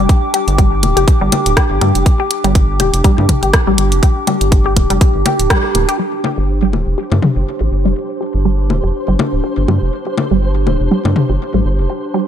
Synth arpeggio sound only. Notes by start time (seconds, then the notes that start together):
0.34 G4
0.58 G3
0.97 G4
1.21 G3
1.57 G4
1.81 G3
2.20 G4
2.44 G3
2.80 G4
3.04 G3
3.43 G4
3.67 G3
4.03 G4
4.27 G3
4.66 G4
4.90 G3
5.26 G4
5.50 G3
5.89 G4
5.99 G3
6.38 G4
6.62 G3
6.98 G4
7.22 G3
7.61 G4
7.85 G3
8.21 G4
8.45 G3
8.84 G4
9.08 G3
9.44 G4
9.68 G3
10.07 G4
10.31 G3
10.67 G4
10.91 G3
11.30 G4
11.54 G3
11.90 G4
12.14 G3